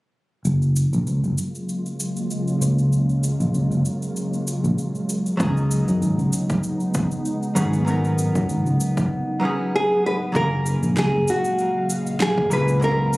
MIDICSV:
0, 0, Header, 1, 6, 480
1, 0, Start_track
1, 0, Key_signature, 6, "major"
1, 0, Tempo, 618557
1, 351, Time_signature, 4, 2, 24, 8
1, 10221, End_track
2, 0, Start_track
2, 0, Title_t, "Nylon-string guitar"
2, 0, Program_c, 0, 24
2, 7570, Note_on_c, 0, 68, 96
2, 7806, Note_off_c, 0, 68, 0
2, 7809, Note_on_c, 0, 71, 95
2, 7871, Note_off_c, 0, 71, 0
2, 8041, Note_on_c, 0, 70, 97
2, 8523, Note_off_c, 0, 70, 0
2, 8526, Note_on_c, 0, 68, 84
2, 8766, Note_off_c, 0, 68, 0
2, 8767, Note_on_c, 0, 66, 78
2, 9208, Note_off_c, 0, 66, 0
2, 9484, Note_on_c, 0, 68, 86
2, 9721, Note_off_c, 0, 68, 0
2, 9724, Note_on_c, 0, 71, 97
2, 9960, Note_off_c, 0, 71, 0
2, 9963, Note_on_c, 0, 70, 97
2, 10221, Note_off_c, 0, 70, 0
2, 10221, End_track
3, 0, Start_track
3, 0, Title_t, "Hollow-body jazz guitar"
3, 0, Program_c, 1, 26
3, 4169, Note_on_c, 1, 54, 81
3, 4179, Note_on_c, 1, 59, 72
3, 4191, Note_on_c, 1, 61, 74
3, 4200, Note_on_c, 1, 63, 75
3, 4211, Note_on_c, 1, 68, 97
3, 5834, Note_off_c, 1, 54, 0
3, 5839, Note_off_c, 1, 59, 0
3, 5845, Note_off_c, 1, 61, 0
3, 5850, Note_off_c, 1, 63, 0
3, 5855, Note_off_c, 1, 68, 0
3, 5859, Note_on_c, 1, 54, 85
3, 5864, Note_on_c, 1, 59, 76
3, 5870, Note_on_c, 1, 61, 74
3, 5875, Note_on_c, 1, 63, 80
3, 5881, Note_on_c, 1, 68, 92
3, 6079, Note_off_c, 1, 54, 0
3, 6082, Note_off_c, 1, 59, 0
3, 6085, Note_off_c, 1, 61, 0
3, 6087, Note_off_c, 1, 63, 0
3, 6089, Note_on_c, 1, 54, 76
3, 6090, Note_off_c, 1, 68, 0
3, 6100, Note_on_c, 1, 59, 69
3, 6111, Note_on_c, 1, 61, 69
3, 6121, Note_on_c, 1, 63, 66
3, 6132, Note_on_c, 1, 70, 85
3, 7274, Note_off_c, 1, 54, 0
3, 7279, Note_off_c, 1, 59, 0
3, 7285, Note_off_c, 1, 61, 0
3, 7290, Note_off_c, 1, 63, 0
3, 7291, Note_on_c, 1, 54, 86
3, 7295, Note_off_c, 1, 70, 0
3, 7301, Note_on_c, 1, 59, 79
3, 7312, Note_on_c, 1, 61, 74
3, 7323, Note_on_c, 1, 63, 81
3, 7333, Note_on_c, 1, 68, 93
3, 7995, Note_off_c, 1, 54, 0
3, 8000, Note_off_c, 1, 59, 0
3, 8006, Note_off_c, 1, 61, 0
3, 8009, Note_on_c, 1, 54, 86
3, 8011, Note_off_c, 1, 63, 0
3, 8016, Note_off_c, 1, 68, 0
3, 8020, Note_on_c, 1, 58, 78
3, 8032, Note_on_c, 1, 61, 81
3, 8042, Note_on_c, 1, 77, 73
3, 8053, Note_on_c, 1, 68, 92
3, 9674, Note_off_c, 1, 54, 0
3, 9680, Note_off_c, 1, 58, 0
3, 9685, Note_off_c, 1, 61, 0
3, 9690, Note_off_c, 1, 77, 0
3, 9696, Note_off_c, 1, 68, 0
3, 9699, Note_on_c, 1, 54, 85
3, 9704, Note_on_c, 1, 58, 76
3, 9710, Note_on_c, 1, 61, 82
3, 9714, Note_on_c, 1, 65, 72
3, 9720, Note_on_c, 1, 68, 90
3, 9919, Note_off_c, 1, 54, 0
3, 9922, Note_off_c, 1, 58, 0
3, 9925, Note_off_c, 1, 61, 0
3, 9927, Note_off_c, 1, 65, 0
3, 9929, Note_on_c, 1, 54, 79
3, 9930, Note_off_c, 1, 68, 0
3, 9939, Note_on_c, 1, 58, 75
3, 9951, Note_on_c, 1, 61, 70
3, 9960, Note_on_c, 1, 65, 75
3, 9972, Note_on_c, 1, 70, 90
3, 10221, Note_off_c, 1, 54, 0
3, 10221, Note_off_c, 1, 58, 0
3, 10221, Note_off_c, 1, 61, 0
3, 10221, Note_off_c, 1, 65, 0
3, 10221, Note_off_c, 1, 70, 0
3, 10221, End_track
4, 0, Start_track
4, 0, Title_t, "Ambient pad"
4, 0, Program_c, 2, 92
4, 351, Note_on_c, 2, 49, 73
4, 351, Note_on_c, 2, 56, 69
4, 351, Note_on_c, 2, 58, 65
4, 352, Note_on_c, 2, 54, 65
4, 353, Note_on_c, 2, 65, 78
4, 3920, Note_off_c, 2, 56, 0
4, 3920, Note_off_c, 2, 58, 0
4, 3921, Note_off_c, 2, 65, 0
4, 3953, Note_on_c, 2, 63, 82
4, 3954, Note_on_c, 2, 56, 66
4, 3955, Note_on_c, 2, 59, 68
4, 7040, Note_off_c, 2, 49, 0
4, 7040, Note_off_c, 2, 54, 0
4, 7041, Note_off_c, 2, 56, 0
4, 7041, Note_off_c, 2, 63, 0
4, 7042, Note_off_c, 2, 59, 0
4, 8032, Note_on_c, 2, 77, 85
4, 8033, Note_on_c, 2, 49, 74
4, 8033, Note_on_c, 2, 54, 64
4, 8033, Note_on_c, 2, 56, 64
4, 8034, Note_on_c, 2, 46, 67
4, 10221, Note_off_c, 2, 46, 0
4, 10221, Note_off_c, 2, 49, 0
4, 10221, Note_off_c, 2, 54, 0
4, 10221, Note_off_c, 2, 56, 0
4, 10221, Note_off_c, 2, 77, 0
4, 10221, End_track
5, 0, Start_track
5, 0, Title_t, "Fretless electric bass"
5, 0, Program_c, 3, 35
5, 349, Note_on_c, 3, 30, 86
5, 661, Note_off_c, 3, 30, 0
5, 722, Note_on_c, 3, 34, 78
5, 800, Note_off_c, 3, 34, 0
5, 830, Note_on_c, 3, 37, 68
5, 924, Note_off_c, 3, 37, 0
5, 961, Note_on_c, 3, 30, 68
5, 1039, Note_off_c, 3, 30, 0
5, 2028, Note_on_c, 3, 37, 73
5, 2580, Note_off_c, 3, 37, 0
5, 2639, Note_on_c, 3, 34, 86
5, 2718, Note_off_c, 3, 34, 0
5, 2746, Note_on_c, 3, 37, 75
5, 2842, Note_off_c, 3, 37, 0
5, 2878, Note_on_c, 3, 30, 72
5, 2958, Note_off_c, 3, 30, 0
5, 3601, Note_on_c, 3, 34, 84
5, 3679, Note_off_c, 3, 34, 0
5, 4190, Note_on_c, 3, 37, 90
5, 4502, Note_off_c, 3, 37, 0
5, 4562, Note_on_c, 3, 42, 89
5, 4639, Note_off_c, 3, 42, 0
5, 4669, Note_on_c, 3, 32, 73
5, 4764, Note_off_c, 3, 32, 0
5, 4801, Note_on_c, 3, 37, 72
5, 4879, Note_off_c, 3, 37, 0
5, 5871, Note_on_c, 3, 32, 81
5, 6422, Note_off_c, 3, 32, 0
5, 6483, Note_on_c, 3, 42, 83
5, 6560, Note_off_c, 3, 42, 0
5, 6590, Note_on_c, 3, 32, 77
5, 6685, Note_off_c, 3, 32, 0
5, 6722, Note_on_c, 3, 37, 78
5, 6800, Note_off_c, 3, 37, 0
5, 8033, Note_on_c, 3, 30, 85
5, 8343, Note_off_c, 3, 30, 0
5, 8402, Note_on_c, 3, 34, 80
5, 8480, Note_off_c, 3, 34, 0
5, 8513, Note_on_c, 3, 37, 74
5, 8606, Note_off_c, 3, 37, 0
5, 8642, Note_on_c, 3, 30, 73
5, 8720, Note_off_c, 3, 30, 0
5, 9711, Note_on_c, 3, 37, 75
5, 10221, Note_off_c, 3, 37, 0
5, 10221, End_track
6, 0, Start_track
6, 0, Title_t, "Drums"
6, 349, Note_on_c, 9, 69, 37
6, 427, Note_off_c, 9, 69, 0
6, 482, Note_on_c, 9, 69, 17
6, 559, Note_off_c, 9, 69, 0
6, 589, Note_on_c, 9, 69, 71
6, 667, Note_off_c, 9, 69, 0
6, 722, Note_on_c, 9, 69, 29
6, 800, Note_off_c, 9, 69, 0
6, 830, Note_on_c, 9, 69, 37
6, 907, Note_off_c, 9, 69, 0
6, 961, Note_on_c, 9, 69, 17
6, 1039, Note_off_c, 9, 69, 0
6, 1069, Note_on_c, 9, 69, 66
6, 1147, Note_off_c, 9, 69, 0
6, 1203, Note_on_c, 9, 69, 28
6, 1281, Note_off_c, 9, 69, 0
6, 1310, Note_on_c, 9, 69, 35
6, 1388, Note_off_c, 9, 69, 0
6, 1443, Note_on_c, 9, 69, 20
6, 1520, Note_off_c, 9, 69, 0
6, 1551, Note_on_c, 9, 69, 63
6, 1628, Note_off_c, 9, 69, 0
6, 1681, Note_on_c, 9, 69, 27
6, 1758, Note_off_c, 9, 69, 0
6, 1789, Note_on_c, 9, 69, 38
6, 1867, Note_off_c, 9, 69, 0
6, 1921, Note_on_c, 9, 69, 20
6, 1999, Note_off_c, 9, 69, 0
6, 2031, Note_on_c, 9, 69, 67
6, 2108, Note_off_c, 9, 69, 0
6, 2161, Note_on_c, 9, 69, 28
6, 2239, Note_off_c, 9, 69, 0
6, 2270, Note_on_c, 9, 69, 39
6, 2347, Note_off_c, 9, 69, 0
6, 2401, Note_on_c, 9, 69, 18
6, 2478, Note_off_c, 9, 69, 0
6, 2510, Note_on_c, 9, 69, 66
6, 2587, Note_off_c, 9, 69, 0
6, 2641, Note_on_c, 9, 69, 31
6, 2719, Note_off_c, 9, 69, 0
6, 2750, Note_on_c, 9, 69, 36
6, 2827, Note_off_c, 9, 69, 0
6, 2882, Note_on_c, 9, 69, 19
6, 2960, Note_off_c, 9, 69, 0
6, 2989, Note_on_c, 9, 69, 72
6, 3067, Note_off_c, 9, 69, 0
6, 3122, Note_on_c, 9, 69, 31
6, 3199, Note_off_c, 9, 69, 0
6, 3231, Note_on_c, 9, 69, 43
6, 3309, Note_off_c, 9, 69, 0
6, 3363, Note_on_c, 9, 69, 22
6, 3441, Note_off_c, 9, 69, 0
6, 3471, Note_on_c, 9, 69, 71
6, 3548, Note_off_c, 9, 69, 0
6, 3604, Note_on_c, 9, 69, 28
6, 3681, Note_off_c, 9, 69, 0
6, 3711, Note_on_c, 9, 69, 38
6, 3789, Note_off_c, 9, 69, 0
6, 3842, Note_on_c, 9, 69, 19
6, 3919, Note_off_c, 9, 69, 0
6, 3952, Note_on_c, 9, 69, 73
6, 4029, Note_off_c, 9, 69, 0
6, 4083, Note_on_c, 9, 69, 31
6, 4161, Note_off_c, 9, 69, 0
6, 4190, Note_on_c, 9, 69, 43
6, 4191, Note_on_c, 9, 36, 108
6, 4268, Note_off_c, 9, 36, 0
6, 4268, Note_off_c, 9, 69, 0
6, 4323, Note_on_c, 9, 69, 19
6, 4400, Note_off_c, 9, 69, 0
6, 4431, Note_on_c, 9, 69, 74
6, 4509, Note_off_c, 9, 69, 0
6, 4563, Note_on_c, 9, 69, 32
6, 4641, Note_off_c, 9, 69, 0
6, 4673, Note_on_c, 9, 69, 39
6, 4750, Note_off_c, 9, 69, 0
6, 4804, Note_on_c, 9, 69, 20
6, 4881, Note_off_c, 9, 69, 0
6, 4909, Note_on_c, 9, 69, 77
6, 4987, Note_off_c, 9, 69, 0
6, 5041, Note_on_c, 9, 69, 32
6, 5042, Note_on_c, 9, 36, 86
6, 5118, Note_off_c, 9, 69, 0
6, 5120, Note_off_c, 9, 36, 0
6, 5148, Note_on_c, 9, 69, 43
6, 5226, Note_off_c, 9, 69, 0
6, 5278, Note_on_c, 9, 69, 21
6, 5356, Note_off_c, 9, 69, 0
6, 5386, Note_on_c, 9, 69, 72
6, 5391, Note_on_c, 9, 36, 93
6, 5464, Note_off_c, 9, 69, 0
6, 5469, Note_off_c, 9, 36, 0
6, 5520, Note_on_c, 9, 69, 30
6, 5597, Note_off_c, 9, 69, 0
6, 5629, Note_on_c, 9, 69, 39
6, 5706, Note_off_c, 9, 69, 0
6, 5763, Note_on_c, 9, 69, 20
6, 5841, Note_off_c, 9, 69, 0
6, 5869, Note_on_c, 9, 69, 80
6, 5946, Note_off_c, 9, 69, 0
6, 6001, Note_on_c, 9, 69, 29
6, 6079, Note_off_c, 9, 69, 0
6, 6109, Note_on_c, 9, 69, 44
6, 6187, Note_off_c, 9, 69, 0
6, 6243, Note_on_c, 9, 69, 20
6, 6321, Note_off_c, 9, 69, 0
6, 6350, Note_on_c, 9, 69, 73
6, 6427, Note_off_c, 9, 69, 0
6, 6483, Note_on_c, 9, 36, 55
6, 6483, Note_on_c, 9, 69, 32
6, 6560, Note_off_c, 9, 36, 0
6, 6560, Note_off_c, 9, 69, 0
6, 6590, Note_on_c, 9, 69, 39
6, 6668, Note_off_c, 9, 69, 0
6, 6722, Note_on_c, 9, 69, 19
6, 6800, Note_off_c, 9, 69, 0
6, 6831, Note_on_c, 9, 69, 77
6, 6908, Note_off_c, 9, 69, 0
6, 6963, Note_on_c, 9, 36, 87
6, 6963, Note_on_c, 9, 69, 33
6, 7040, Note_off_c, 9, 36, 0
6, 7041, Note_off_c, 9, 69, 0
6, 8032, Note_on_c, 9, 36, 111
6, 8033, Note_on_c, 9, 69, 33
6, 8109, Note_off_c, 9, 36, 0
6, 8111, Note_off_c, 9, 69, 0
6, 8272, Note_on_c, 9, 69, 70
6, 8349, Note_off_c, 9, 69, 0
6, 8404, Note_on_c, 9, 69, 39
6, 8481, Note_off_c, 9, 69, 0
6, 8510, Note_on_c, 9, 38, 92
6, 8512, Note_on_c, 9, 69, 30
6, 8588, Note_off_c, 9, 38, 0
6, 8589, Note_off_c, 9, 69, 0
6, 8751, Note_on_c, 9, 69, 75
6, 8829, Note_off_c, 9, 69, 0
6, 8882, Note_on_c, 9, 69, 43
6, 8959, Note_off_c, 9, 69, 0
6, 8990, Note_on_c, 9, 69, 31
6, 9068, Note_off_c, 9, 69, 0
6, 9232, Note_on_c, 9, 69, 74
6, 9309, Note_off_c, 9, 69, 0
6, 9363, Note_on_c, 9, 69, 38
6, 9441, Note_off_c, 9, 69, 0
6, 9468, Note_on_c, 9, 38, 93
6, 9469, Note_on_c, 9, 69, 29
6, 9546, Note_off_c, 9, 38, 0
6, 9547, Note_off_c, 9, 69, 0
6, 9604, Note_on_c, 9, 36, 98
6, 9682, Note_off_c, 9, 36, 0
6, 9709, Note_on_c, 9, 69, 75
6, 9786, Note_off_c, 9, 69, 0
6, 9840, Note_on_c, 9, 69, 38
6, 9918, Note_off_c, 9, 69, 0
6, 9949, Note_on_c, 9, 69, 34
6, 10027, Note_off_c, 9, 69, 0
6, 10190, Note_on_c, 9, 69, 77
6, 10221, Note_off_c, 9, 69, 0
6, 10221, End_track
0, 0, End_of_file